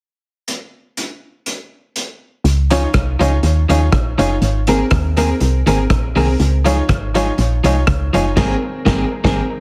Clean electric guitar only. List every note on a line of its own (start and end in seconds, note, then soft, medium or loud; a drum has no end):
2.71 2.81 F3 medium
2.71 2.81 C#4 medium
2.71 2.82 D#4 medium
2.71 2.82 G#4 medium
2.93 muted clean electric guitar stroke soft
3.19 3.30 F3 loud
3.19 3.31 C#4 medium
3.19 3.31 D#4 loud
3.19 3.31 G#4 loud
3.43 muted clean electric guitar stroke soft
3.69 3.80 F3 medium
3.69 3.80 C#4 medium
3.69 3.80 D#4 medium
3.69 3.80 G#4 medium
3.92 muted clean electric guitar stroke soft
4.18 4.29 F3 medium
4.18 4.29 C#4 medium
4.18 4.29 D#4 medium
4.18 4.30 G#4 loud
4.68 4.78 D#3 medium
4.68 4.79 A#3 loud
4.68 4.79 C4 loud
4.68 4.79 G#4 loud
4.91 muted clean electric guitar stroke soft
5.17 5.28 D#3 medium
5.17 5.28 A#3 medium
5.17 5.28 C4 medium
5.17 5.29 G#4 medium
5.40 muted clean electric guitar stroke soft
5.66 5.77 D#3 medium
5.66 5.77 A#3 medium
5.66 5.78 C4 loud
5.66 5.78 G#4 loud
6.16 6.26 D#3 medium
6.16 6.27 A#3 medium
6.16 6.27 C4 loud
6.16 6.27 G#4 medium
6.65 6.76 F3 medium
6.65 6.76 G#3 medium
6.65 6.76 D#4 medium
6.65 6.77 G#4 medium
6.88 muted clean electric guitar stroke soft
7.15 7.25 F3 medium
7.15 7.26 G#3 medium
7.15 7.26 D#4 medium
7.15 7.26 G#4 medium
7.38 muted clean electric guitar stroke soft
7.64 7.74 F3 medium
7.64 7.75 G#3 medium
7.64 7.75 D#4 medium
7.64 7.75 G#4 medium
7.87 muted clean electric guitar stroke soft
8.13 8.24 F3 medium
8.13 8.24 G#3 medium
8.13 8.25 D#4 medium
8.13 8.25 G#4 loud
8.36 8.54 D#3 medium
8.36 8.55 A#3 medium
8.36 8.55 C4 loud
8.36 8.55 G#4 medium
8.85 9.04 D#3 medium
8.85 9.04 A#3 medium
8.85 9.04 C4 medium
8.85 9.05 G#4 medium
9.24 9.41 D#3 loud
9.24 9.41 A#3 medium
9.24 9.41 C4 medium
9.24 9.41 G#4 medium